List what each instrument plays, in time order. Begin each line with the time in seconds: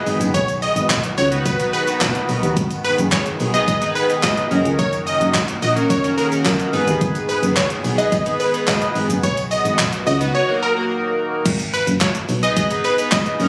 Already playing: analog synth pad D#3 B3 G#4, analog polysynth B3 D#4 G#4 B4, digital synth lead D#5
0.06 fm bass G#1, open hi-hat, tambourine, shaker
0.20 fm bass F#1, closed hi-hat, tambourine, shaker
0.34 fm bass B1, analog synth pad D#3 B3 F#4, digital synth lead C#5, kick, closed hi-hat, shaker
0.48 closed hi-hat, tambourine, shaker
0.62 digital synth lead D#5, open hi-hat, tambourine, shaker
0.76 fm bass G#1, closed hi-hat, shaker
0.90 fm bass B1, kick, snare, clap, closed hi-hat, tambourine, shaker
1.04 closed hi-hat, shaker
1.17 fm bass C#2, digital synth lead C#5, open hi-hat, tambourine, shaker
1.31 analog polysynth B3 D#4 F#4 B4, closed hi-hat, shaker
1.45 fm bass B1, digital synth lead B4, kick, closed hi-hat, tambourine, shaker
1.59 analog polysynth B3 D#4 F#4 B4, closed hi-hat, shaker
1.73 analog polysynth B3 D#4 F#4 G#4, digital synth lead B4, open hi-hat, tambourine, shaker
1.87 analog polysynth B3 D#4 F#4 B4, closed hi-hat, tambourine, shaker
2.01 fm bass B2, kick, snare, clap, closed hi-hat, tambourine, shaker
2.15 closed hi-hat, shaker
2.29 fm bass B1, open hi-hat, tambourine, shaker
2.43 fm bass D#2, closed hi-hat, tambourine, shaker
2.56 fm bass G#1, analog synth pad G#4, kick, closed hi-hat, shaker
2.71 closed hi-hat, tambourine, shaker
2.84 digital synth lead B4, open hi-hat, tambourine, shaker
2.98 fm bass F#1, closed hi-hat, shaker
3.12 fm bass G#1, digital synth lead C#5, kick, snare, clap, closed hi-hat, tambourine, shaker
3.26 closed hi-hat, shaker
3.40 fm bass B1, open hi-hat, tambourine, shaker
3.54 analog polysynth B3 D#4 G#4 B4, digital synth lead D#5, closed hi-hat, shaker
3.68 fm bass G#1, digital synth lead D#5, kick, closed hi-hat, tambourine, shaker
3.82 analog polysynth B3 D#4 G#4 B4, closed hi-hat, tambourine, shaker
3.95 analog polysynth B3 D#4 G#4 B4, digital synth lead B4, open hi-hat, tambourine, shaker
4.09 analog polysynth B3 D#4 G#4 B4, closed hi-hat, shaker
4.23 fm bass G#2, digital synth lead D#5, kick, snare, clap, closed hi-hat, tambourine, shaker
4.37 closed hi-hat, shaker
4.51 fm bass F#1, analog synth pad A#3 F#4, analog polysynth C#4 D#4 F#4 A#4, open hi-hat, tambourine, shaker
4.65 fm bass C#2, closed hi-hat, shaker
4.79 fm bass F#1, digital synth lead C#5, kick, closed hi-hat, shaker
4.93 closed hi-hat, tambourine, shaker
5.07 digital synth lead D#5, open hi-hat, tambourine, shaker
5.21 fm bass F#1, closed hi-hat, shaker
5.34 fm bass G#1, kick, snare, clap, closed hi-hat, tambourine, shaker
5.48 closed hi-hat, shaker
5.62 fm bass A#1, digital synth lead D#5, open hi-hat, tambourine, shaker
5.76 analog polysynth C#4 D#4 F#4 A#4, closed hi-hat, shaker
5.90 fm bass F#1, digital synth lead C#5, kick, closed hi-hat, tambourine, shaker
6.04 analog polysynth C#4 D#4 F#4 A#4, closed hi-hat, shaker
6.18 analog polysynth C#4 D#4 F#4 G#4, digital synth lead A#4, open hi-hat, tambourine, shaker
6.31 analog polysynth C#4 D#4 F#4 A#4, closed hi-hat, tambourine, shaker
6.45 fm bass F#2, kick, snare, clap, closed hi-hat, tambourine, shaker
6.60 closed hi-hat, shaker
6.73 fm bass G#1, analog polysynth B3 D#4 G#4 B4, analog synth pad B3 G#4, open hi-hat, tambourine, shaker
6.87 fm bass D#2, closed hi-hat, tambourine, shaker
7.01 fm bass G#1, kick, closed hi-hat, shaker
7.15 closed hi-hat, tambourine, shaker
7.29 digital synth lead B4, open hi-hat, tambourine, shaker
7.43 fm bass F#1, closed hi-hat, shaker
7.57 fm bass G#1, digital synth lead C#5, kick, snare, clap, closed hi-hat, tambourine, shaker
7.70 closed hi-hat, shaker
7.84 fm bass B1, open hi-hat, tambourine, shaker
7.98 analog polysynth B3 D#4 G#4 B4, digital synth lead D#5, closed hi-hat, shaker
8.12 fm bass G#1, digital synth lead D#5, kick, closed hi-hat, tambourine, shaker
8.26 analog polysynth B3 D#4 G#4 B4, closed hi-hat, shaker
8.40 analog polysynth B3 D#4 G#4 B4, digital synth lead B4, open hi-hat, tambourine, shaker
8.54 analog polysynth B3 D#4 G#4 B4, closed hi-hat, shaker
8.68 fm bass G#2, digital synth lead D#5, kick, snare, clap, closed hi-hat, tambourine, shaker
8.82 closed hi-hat, shaker
8.95 fm bass G#1, open hi-hat, tambourine, shaker
9.09 fm bass F#1, closed hi-hat, tambourine, shaker
9.23 fm bass B1, analog synth pad B3 F#4, digital synth lead C#5, kick, closed hi-hat, shaker
9.37 closed hi-hat, tambourine, shaker
9.51 digital synth lead D#5, open hi-hat, tambourine, shaker
9.65 fm bass G#1, closed hi-hat, shaker
9.79 fm bass B1, kick, snare, clap, closed hi-hat, tambourine, shaker
9.93 closed hi-hat, shaker
10.07 fm bass C#2, digital synth lead D#5, open hi-hat, tambourine, shaker
10.20 analog polysynth B3 D#4 F#4 B4, closed hi-hat, tambourine, shaker
10.35 analog synth pad A#3, digital synth lead C#5
10.48 analog polysynth A#3 D#4 F#4 A#4
10.62 analog polysynth A#3 D#4 F#4 A#4, digital synth lead A#4
10.76 analog polysynth A#3 D#4 F#4 A#4
11.46 fm bass G#1, kick, closed hi-hat, crash, shaker
11.60 closed hi-hat, tambourine, shaker
11.73 digital synth lead B4, open hi-hat, tambourine, shaker
11.87 fm bass F#1, closed hi-hat, shaker
12.01 fm bass G#1, digital synth lead C#5, kick, snare, clap, closed hi-hat, tambourine, shaker
12.15 closed hi-hat, shaker
12.29 fm bass B1, open hi-hat, tambourine, shaker
12.43 analog polysynth B3 D#4 G#4 B4, digital synth lead D#5, closed hi-hat, shaker
12.56 fm bass G#1, digital synth lead D#5, kick, closed hi-hat, tambourine, shaker
12.70 analog polysynth B3 D#4 G#4 B4, closed hi-hat, tambourine, shaker
12.84 analog polysynth B3 D#4 G#4 B4, digital synth lead B4, open hi-hat, tambourine, shaker
12.98 analog polysynth B3 D#4 G#4 B4, closed hi-hat, tambourine, shaker
13.12 fm bass G#2, digital synth lead D#5, kick, snare, clap, closed hi-hat, tambourine, shaker
13.26 closed hi-hat, shaker
13.40 fm bass F#1, analog polysynth C#4 D#4 F#4 A#4, open hi-hat, tambourine, shaker